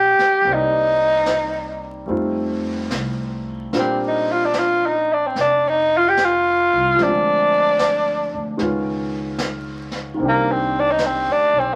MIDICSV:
0, 0, Header, 1, 6, 480
1, 0, Start_track
1, 0, Key_signature, -3, "minor"
1, 0, Tempo, 814111
1, 276, Time_signature, 4, 2, 24, 8
1, 4116, Tempo, 803213
1, 6968, End_track
2, 0, Start_track
2, 0, Title_t, "Tenor saxophone"
2, 0, Program_c, 0, 66
2, 0, Note_on_c, 0, 67, 87
2, 314, Note_on_c, 0, 63, 87
2, 323, Note_off_c, 0, 67, 0
2, 1094, Note_off_c, 0, 63, 0
2, 2234, Note_on_c, 0, 60, 67
2, 2368, Note_off_c, 0, 60, 0
2, 2403, Note_on_c, 0, 63, 70
2, 2550, Note_on_c, 0, 65, 69
2, 2559, Note_off_c, 0, 63, 0
2, 2624, Note_on_c, 0, 62, 65
2, 2633, Note_off_c, 0, 65, 0
2, 2705, Note_on_c, 0, 65, 76
2, 2714, Note_off_c, 0, 62, 0
2, 2866, Note_on_c, 0, 63, 74
2, 2875, Note_off_c, 0, 65, 0
2, 3025, Note_on_c, 0, 62, 64
2, 3034, Note_off_c, 0, 63, 0
2, 3106, Note_on_c, 0, 60, 60
2, 3115, Note_off_c, 0, 62, 0
2, 3171, Note_off_c, 0, 60, 0
2, 3188, Note_on_c, 0, 62, 83
2, 3353, Note_on_c, 0, 63, 79
2, 3362, Note_off_c, 0, 62, 0
2, 3520, Note_on_c, 0, 65, 76
2, 3529, Note_off_c, 0, 63, 0
2, 3587, Note_on_c, 0, 67, 75
2, 3596, Note_off_c, 0, 65, 0
2, 3681, Note_on_c, 0, 65, 83
2, 3690, Note_off_c, 0, 67, 0
2, 4145, Note_on_c, 0, 62, 83
2, 4153, Note_off_c, 0, 65, 0
2, 5091, Note_off_c, 0, 62, 0
2, 6090, Note_on_c, 0, 58, 74
2, 6231, Note_on_c, 0, 60, 69
2, 6240, Note_off_c, 0, 58, 0
2, 6396, Note_on_c, 0, 62, 79
2, 6405, Note_off_c, 0, 60, 0
2, 6466, Note_on_c, 0, 63, 81
2, 6475, Note_off_c, 0, 62, 0
2, 6552, Note_on_c, 0, 60, 71
2, 6561, Note_off_c, 0, 63, 0
2, 6710, Note_on_c, 0, 62, 85
2, 6719, Note_off_c, 0, 60, 0
2, 6872, Note_on_c, 0, 60, 73
2, 6881, Note_off_c, 0, 62, 0
2, 6968, Note_off_c, 0, 60, 0
2, 6968, End_track
3, 0, Start_track
3, 0, Title_t, "Grand piano"
3, 0, Program_c, 1, 0
3, 0, Control_c, 1, 64, 127
3, 0, Note_on_c, 1, 53, 45
3, 0, Note_on_c, 1, 55, 41
3, 0, Note_on_c, 1, 58, 43
3, 0, Note_on_c, 1, 62, 42
3, 0, Note_on_c, 1, 65, 51
3, 236, Note_off_c, 1, 55, 0
3, 245, Note_on_c, 1, 55, 44
3, 253, Note_off_c, 1, 58, 0
3, 262, Note_on_c, 1, 58, 42
3, 272, Note_off_c, 1, 53, 0
3, 272, Note_on_c, 1, 60, 44
3, 275, Note_off_c, 1, 62, 0
3, 276, Note_off_c, 1, 65, 0
3, 284, Control_c, 1, 64, 0
3, 298, Note_on_c, 1, 74, 44
3, 314, Note_on_c, 1, 63, 54
3, 374, Control_c, 1, 64, 127
3, 1205, Note_off_c, 1, 55, 0
3, 1214, Note_on_c, 1, 55, 43
3, 1222, Note_off_c, 1, 60, 0
3, 1223, Note_on_c, 1, 57, 39
3, 1226, Note_off_c, 1, 58, 0
3, 1226, Note_off_c, 1, 63, 0
3, 1231, Note_on_c, 1, 60, 43
3, 1235, Note_on_c, 1, 63, 39
3, 1241, Control_c, 1, 64, 0
3, 1244, Note_off_c, 1, 74, 0
3, 1244, Note_on_c, 1, 65, 46
3, 1346, Control_c, 1, 64, 127
3, 2188, Note_off_c, 1, 55, 0
3, 2193, Note_off_c, 1, 60, 0
3, 2195, Note_off_c, 1, 57, 0
3, 2197, Note_on_c, 1, 55, 47
3, 2198, Note_on_c, 1, 58, 43
3, 2200, Note_off_c, 1, 65, 0
3, 2201, Note_off_c, 1, 63, 0
3, 2202, Note_on_c, 1, 60, 45
3, 2202, Note_on_c, 1, 62, 46
3, 2208, Control_c, 1, 64, 0
3, 2209, Note_on_c, 1, 65, 48
3, 2318, Control_c, 1, 64, 127
3, 4102, Note_on_c, 1, 53, 42
3, 4113, Note_off_c, 1, 55, 0
3, 4114, Note_off_c, 1, 58, 0
3, 4116, Note_off_c, 1, 60, 0
3, 4116, Note_off_c, 1, 62, 0
3, 4119, Note_off_c, 1, 65, 0
3, 4119, Note_on_c, 1, 56, 39
3, 4122, Control_c, 1, 64, 0
3, 4138, Note_on_c, 1, 60, 42
3, 4157, Note_on_c, 1, 62, 39
3, 4171, Note_on_c, 1, 65, 51
3, 4218, Control_c, 1, 64, 127
3, 5063, Note_off_c, 1, 56, 0
3, 5067, Note_on_c, 1, 51, 48
3, 5070, Note_off_c, 1, 53, 0
3, 5072, Note_on_c, 1, 56, 42
3, 5078, Note_on_c, 1, 59, 46
3, 5084, Control_c, 1, 64, 0
3, 5087, Note_on_c, 1, 61, 42
3, 5088, Note_off_c, 1, 60, 0
3, 5091, Note_off_c, 1, 65, 0
3, 5097, Note_off_c, 1, 62, 0
3, 5100, Note_on_c, 1, 65, 54
3, 5181, Control_c, 1, 64, 127
3, 5997, Note_off_c, 1, 51, 0
3, 6006, Note_on_c, 1, 51, 50
3, 6021, Note_on_c, 1, 58, 41
3, 6031, Note_off_c, 1, 56, 0
3, 6035, Note_off_c, 1, 59, 0
3, 6037, Note_on_c, 1, 60, 45
3, 6039, Note_off_c, 1, 61, 0
3, 6042, Control_c, 1, 64, 0
3, 6045, Note_off_c, 1, 65, 0
3, 6057, Note_on_c, 1, 62, 44
3, 6072, Note_on_c, 1, 67, 52
3, 6151, Control_c, 1, 64, 127
3, 6968, Note_off_c, 1, 51, 0
3, 6968, Note_off_c, 1, 58, 0
3, 6968, Note_off_c, 1, 60, 0
3, 6968, Note_off_c, 1, 62, 0
3, 6968, Note_off_c, 1, 67, 0
3, 6968, End_track
4, 0, Start_track
4, 0, Title_t, "Upright bass"
4, 0, Program_c, 2, 32
4, 0, Note_on_c, 2, 34, 72
4, 99, Note_off_c, 2, 34, 0
4, 264, Note_on_c, 2, 36, 73
4, 1204, Note_off_c, 2, 36, 0
4, 1231, Note_on_c, 2, 41, 69
4, 1692, Note_off_c, 2, 41, 0
4, 1716, Note_on_c, 2, 36, 65
4, 2176, Note_off_c, 2, 36, 0
4, 2209, Note_on_c, 2, 34, 65
4, 3139, Note_off_c, 2, 34, 0
4, 3155, Note_on_c, 2, 29, 68
4, 3933, Note_off_c, 2, 29, 0
4, 3971, Note_on_c, 2, 36, 65
4, 4111, Note_off_c, 2, 36, 0
4, 4122, Note_on_c, 2, 38, 70
4, 4898, Note_off_c, 2, 38, 0
4, 4928, Note_on_c, 2, 38, 61
4, 5070, Note_off_c, 2, 38, 0
4, 5086, Note_on_c, 2, 37, 70
4, 6015, Note_off_c, 2, 37, 0
4, 6039, Note_on_c, 2, 36, 71
4, 6653, Note_off_c, 2, 36, 0
4, 6677, Note_on_c, 2, 38, 56
4, 6825, Note_off_c, 2, 38, 0
4, 6835, Note_on_c, 2, 35, 61
4, 6968, Note_off_c, 2, 35, 0
4, 6968, End_track
5, 0, Start_track
5, 0, Title_t, "Muted upright bass strokes"
5, 117, Note_on_c, 9, 29, 37
5, 176, Note_off_c, 9, 29, 0
5, 6968, End_track
6, 0, Start_track
6, 0, Title_t, "Drums"
6, 111, Note_on_c, 9, 38, 24
6, 170, Note_off_c, 9, 38, 0
6, 269, Note_on_c, 9, 25, 34
6, 744, Note_on_c, 9, 38, 40
6, 744, Note_on_c, 9, 44, 42
6, 803, Note_off_c, 9, 38, 0
6, 803, Note_off_c, 9, 44, 0
6, 1226, Note_off_c, 9, 25, 0
6, 1226, Note_on_c, 9, 25, 31
6, 1713, Note_on_c, 9, 38, 36
6, 1713, Note_on_c, 9, 44, 47
6, 1772, Note_off_c, 9, 38, 0
6, 1772, Note_off_c, 9, 44, 0
6, 2198, Note_off_c, 9, 25, 0
6, 2198, Note_on_c, 9, 25, 30
6, 2198, Note_on_c, 9, 38, 25
6, 2257, Note_off_c, 9, 38, 0
6, 2674, Note_on_c, 9, 38, 37
6, 2674, Note_on_c, 9, 44, 42
6, 2733, Note_off_c, 9, 38, 0
6, 2733, Note_off_c, 9, 44, 0
6, 3160, Note_off_c, 9, 25, 0
6, 3160, Note_on_c, 9, 25, 34
6, 3160, Note_on_c, 9, 38, 24
6, 3219, Note_off_c, 9, 38, 0
6, 3639, Note_on_c, 9, 38, 38
6, 3639, Note_on_c, 9, 44, 45
6, 3698, Note_off_c, 9, 38, 0
6, 3698, Note_off_c, 9, 44, 0
6, 4120, Note_off_c, 9, 25, 0
6, 4120, Note_on_c, 9, 25, 24
6, 4120, Note_on_c, 9, 38, 23
6, 4180, Note_off_c, 9, 38, 0
6, 4599, Note_on_c, 9, 38, 39
6, 4599, Note_on_c, 9, 44, 48
6, 4659, Note_off_c, 9, 38, 0
6, 4659, Note_off_c, 9, 44, 0
6, 5078, Note_off_c, 9, 25, 0
6, 5078, Note_on_c, 9, 25, 28
6, 5078, Note_on_c, 9, 38, 26
6, 5138, Note_off_c, 9, 38, 0
6, 5552, Note_on_c, 9, 38, 39
6, 5552, Note_on_c, 9, 44, 50
6, 5612, Note_off_c, 9, 38, 0
6, 5612, Note_off_c, 9, 44, 0
6, 5869, Note_on_c, 9, 38, 23
6, 5929, Note_off_c, 9, 38, 0
6, 6030, Note_off_c, 9, 25, 0
6, 6030, Note_on_c, 9, 25, 32
6, 6509, Note_on_c, 9, 38, 42
6, 6509, Note_on_c, 9, 44, 46
6, 6568, Note_off_c, 9, 38, 0
6, 6568, Note_off_c, 9, 44, 0
6, 6968, Note_off_c, 9, 25, 0
6, 6968, End_track
0, 0, End_of_file